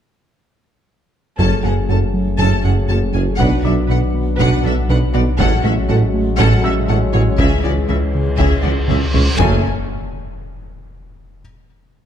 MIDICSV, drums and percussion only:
0, 0, Header, 1, 2, 480
1, 0, Start_track
1, 0, Key_signature, 3, "minor"
1, 0, Tempo, 500000
1, 1337, Time_signature, 4, 2, 24, 8
1, 11574, End_track
2, 0, Start_track
2, 0, Title_t, "Taiko and cinematic ensemble drums"
2, 1334, Note_on_c, 9, 41, 54
2, 1430, Note_off_c, 9, 41, 0
2, 3257, Note_on_c, 9, 41, 85
2, 3353, Note_off_c, 9, 41, 0
2, 4223, Note_on_c, 9, 41, 74
2, 4319, Note_off_c, 9, 41, 0
2, 5179, Note_on_c, 9, 41, 87
2, 5275, Note_off_c, 9, 41, 0
2, 6144, Note_on_c, 9, 41, 84
2, 6240, Note_off_c, 9, 41, 0
2, 7092, Note_on_c, 9, 41, 91
2, 7188, Note_off_c, 9, 41, 0
2, 8053, Note_on_c, 9, 41, 79
2, 8149, Note_off_c, 9, 41, 0
2, 8535, Note_on_c, 9, 47, 53
2, 8631, Note_off_c, 9, 47, 0
2, 8777, Note_on_c, 9, 47, 51
2, 8873, Note_off_c, 9, 47, 0
2, 9018, Note_on_c, 9, 41, 95
2, 9114, Note_off_c, 9, 41, 0
2, 11574, End_track
0, 0, End_of_file